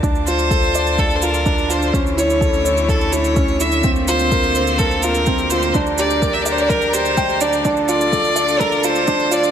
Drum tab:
SH |xxxxxxxxxxxxxxxx|xxxxxxxxxxxxxxxx|xxxxxxxxxxxxxxxx|xxxxxxxxxxxxxxxx|
BD |o---o---o---o---|o---o---o---o---|o---o---o---o---|o---o---o---o---|

SH |xxxxxxxxxxxxxxxx|
BD |o---o---o---o---|